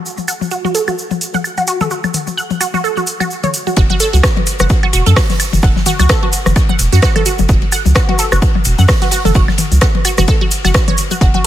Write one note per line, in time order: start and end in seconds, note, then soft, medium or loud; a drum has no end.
0.06 shaker soft
0.18 high tom soft
0.18 shaker soft
0.28 0.31 F#5 medium
0.28 open hi-hat medium
0.28 claves medium
0.28 shaker medium
0.41 high tom medium
0.41 shaker soft
0.51 0.54 F#4 medium
0.51 shaker soft
0.65 0.70 F#4 loud
0.65 high tom medium
0.65 shaker soft
0.75 0.81 A4 medium
0.75 open hi-hat medium
0.75 shaker loud
0.88 0.91 F#4 medium
0.88 high tom soft
0.88 claves medium
0.88 shaker soft
0.98 shaker medium
1.11 high tom medium
1.11 shaker soft
1.21 open hi-hat medium
1.21 shaker medium
1.34 1.36 F#5 loud
1.34 high tom medium
1.34 shaker soft
1.44 claves medium
1.44 shaker medium
1.57 1.60 F#4 medium
1.57 open hi-hat soft
1.57 high tom soft
1.57 shaker soft
1.67 1.74 F#4 medium
1.67 open hi-hat medium
1.67 shaker medium
1.81 1.86 A4 medium
1.81 mid tom medium
1.81 high tom medium
1.81 shaker soft
1.91 1.95 F#4 medium
1.91 shaker soft
2.04 high tom medium
2.04 claves medium
2.04 shaker soft
2.14 open hi-hat medium
2.14 mid tom medium
2.14 shaker medium
2.27 high tom soft
2.27 shaker soft
2.37 2.40 F#5 loud
2.37 shaker soft
2.50 high tom medium
2.50 shaker soft
2.61 2.63 F#4 medium
2.61 open hi-hat medium
2.61 claves medium
2.61 shaker medium
2.74 2.79 F#4 loud
2.74 high tom medium
2.74 shaker soft
2.84 2.91 A4 loud
2.84 shaker soft
2.97 3.01 F#4 medium
2.97 high tom soft
2.97 shaker soft
3.07 open hi-hat medium
3.07 shaker medium
3.20 3.24 F#4 loud
3.20 high tom medium
3.20 claves medium
3.20 shaker soft
3.31 shaker soft
3.43 3.49 C#5 loud
3.43 open hi-hat soft
3.43 mid tom medium
3.43 high tom medium
3.43 shaker soft
3.54 open hi-hat medium
3.54 shaker medium
3.67 3.69 F#4 medium
3.67 high tom soft
3.67 shaker soft
3.76 3.87 F#1 loud
3.76 3.80 F#4 loud
3.76 kick loud
3.76 ride medium
3.76 shaker soft
3.90 3.95 F#4 loud
3.90 high tom medium
3.90 ride soft
4.00 4.07 A4 loud
4.00 open hi-hat loud
4.00 ride medium
4.00 shaker medium
4.13 4.21 C#2 medium
4.13 4.17 F#4 medium
4.13 high tom soft
4.13 shaker medium
4.23 kick loud
4.23 cross-stick loud
4.23 snare loud
4.23 ride medium
4.23 claves medium
4.23 shaker soft
4.37 high tom medium
4.37 ride soft
4.46 open hi-hat medium
4.46 ride medium
4.46 shaker medium
4.59 4.67 F#1 medium
4.59 4.62 F#5 loud
4.59 cross-stick medium
4.59 high tom medium
4.59 shaker medium
4.69 kick loud
4.69 ride medium
4.69 shaker soft
4.83 4.85 F#4 loud
4.83 high tom soft
4.83 claves medium
4.93 5.03 E1 loud
4.93 5.00 F#4 loud
4.93 open hi-hat medium
4.93 ride medium
4.93 shaker loud
5.06 5.14 F#2 loud
5.06 5.12 A4 loud
5.06 high tom medium
5.06 ride soft
5.06 shaker medium
5.16 5.21 F#4 medium
5.16 kick loud
5.16 cross-stick loud
5.16 snare loud
5.16 open hi-hat medium
5.16 shaker soft
5.29 snare medium
5.29 open hi-hat soft
5.29 high tom medium
5.40 open hi-hat medium
5.40 ride medium
5.40 claves medium
5.40 shaker medium
5.53 5.60 F#1 medium
5.53 mid tom loud
5.53 high tom soft
5.53 ride soft
5.53 shaker medium
5.62 5.73 F#1 loud
5.62 5.66 F#5 loud
5.62 kick loud
5.62 ride medium
5.62 shaker soft
5.76 snare soft
5.76 high tom medium
5.86 5.89 F#4 loud
5.86 open hi-hat loud
5.86 mid tom loud
5.86 ride medium
5.86 shaker medium
5.99 6.07 C#2 medium
5.99 6.05 F#4 loud
5.99 open hi-hat soft
5.99 high tom medium
5.99 claves medium
5.99 shaker medium
6.09 6.16 A4 loud
6.09 kick loud
6.09 cross-stick loud
6.09 snare loud
6.09 ride medium
6.09 shaker soft
6.23 6.26 F#4 medium
6.23 high tom soft
6.23 ride soft
6.32 open hi-hat loud
6.32 ride medium
6.32 shaker medium
6.46 6.53 F#1 loud
6.46 cross-stick medium
6.46 mid tom medium
6.46 high tom medium
6.46 shaker medium
6.56 kick loud
6.56 ride medium
6.56 claves medium
6.56 shaker soft
6.69 6.71 F#5 loud
6.69 high tom medium
6.79 6.89 E1 loud
6.79 open hi-hat loud
6.79 ride medium
6.79 shaker loud
6.92 7.00 F#2 medium
6.92 6.95 F#4 loud
6.92 snare soft
6.92 high tom soft
6.92 shaker medium
7.02 7.09 F#4 loud
7.02 kick loud
7.02 cross-stick loud
7.02 snare loud
7.02 ride medium
7.02 shaker soft
7.16 7.21 A4 loud
7.16 open hi-hat soft
7.16 mid tom medium
7.16 high tom medium
7.16 claves medium
7.26 7.30 F#4 medium
7.26 open hi-hat loud
7.26 ride medium
7.26 shaker loud
7.38 7.46 F#1 medium
7.38 high tom medium
7.38 shaker medium
7.49 7.59 F#1 loud
7.49 kick loud
7.49 ride medium
7.49 shaker soft
7.62 high tom soft
7.62 ride soft
7.72 7.75 F#5 loud
7.72 open hi-hat loud
7.72 ride medium
7.72 claves medium
7.72 shaker loud
7.86 7.93 C#2 medium
7.86 high tom medium
7.86 shaker medium
7.95 7.98 F#4 loud
7.95 kick loud
7.95 cross-stick loud
7.95 snare loud
7.95 ride medium
7.95 shaker soft
8.09 8.14 F#4 loud
8.09 high tom medium
8.09 ride soft
8.18 8.26 A4 loud
8.18 open hi-hat loud
8.18 ride medium
8.18 shaker medium
8.32 8.39 F#1 loud
8.32 8.35 F#4 medium
8.32 cross-stick medium
8.32 high tom soft
8.32 claves medium
8.32 shaker medium
8.42 kick loud
8.42 ride medium
8.42 shaker soft
8.55 high tom medium
8.64 8.75 E1 loud
8.64 open hi-hat medium
8.64 ride medium
8.64 shaker medium
8.78 8.86 F#2 medium
8.78 8.81 F#5 loud
8.78 high tom medium
8.78 ride soft
8.78 shaker medium
8.88 kick loud
8.88 cross-stick medium
8.88 snare loud
8.88 open hi-hat medium
8.88 claves medium
8.88 shaker soft
9.01 9.04 F#4 loud
9.01 snare medium
9.01 open hi-hat soft
9.01 high tom soft
9.11 9.19 F#4 loud
9.11 open hi-hat medium
9.11 ride medium
9.11 shaker loud
9.25 9.32 F#1 medium
9.25 9.30 A4 loud
9.25 mid tom loud
9.25 high tom medium
9.25 ride soft
9.25 shaker medium
9.34 9.45 F#1 loud
9.34 9.40 F#4 medium
9.34 kick loud
9.34 ride medium
9.34 shaker soft
9.48 snare soft
9.48 high tom medium
9.48 claves medium
9.58 open hi-hat loud
9.58 mid tom medium
9.58 ride medium
9.58 shaker medium
9.72 9.79 C#2 medium
9.72 open hi-hat soft
9.72 high tom soft
9.72 shaker medium
9.81 9.84 F#5 loud
9.81 kick loud
9.81 cross-stick medium
9.81 snare loud
9.81 ride medium
9.81 shaker soft
9.95 high tom medium
9.95 ride soft
10.05 10.08 F#4 loud
10.05 open hi-hat loud
10.05 ride medium
10.05 claves medium
10.05 shaker medium
10.18 10.25 F#1 loud
10.18 10.23 F#4 loud
10.18 cross-stick medium
10.18 mid tom medium
10.18 high tom medium
10.18 shaker medium
10.28 10.35 A4 loud
10.28 kick loud
10.28 ride loud
10.28 shaker soft
10.41 10.45 F#4 medium
10.41 high tom soft
10.51 open hi-hat medium
10.51 ride medium
10.51 shaker medium
10.65 10.72 F#1 loud
10.65 10.68 F#4 loud
10.65 snare soft
10.65 high tom medium
10.65 claves medium
10.65 shaker medium
10.74 kick loud
10.74 cross-stick medium
10.74 snare loud
10.74 ride loud
10.74 shaker soft
10.88 10.93 C#5 loud
10.88 open hi-hat soft
10.88 mid tom medium
10.88 high tom medium
10.97 open hi-hat medium
10.97 ride medium
10.97 shaker loud
11.11 11.13 F#4 medium
11.11 high tom soft
11.11 shaker medium
11.21 11.31 F#1 loud
11.21 11.24 F#4 loud
11.21 kick loud
11.21 ride medium
11.21 shaker soft
11.34 11.40 F#4 loud
11.34 high tom medium
11.34 ride soft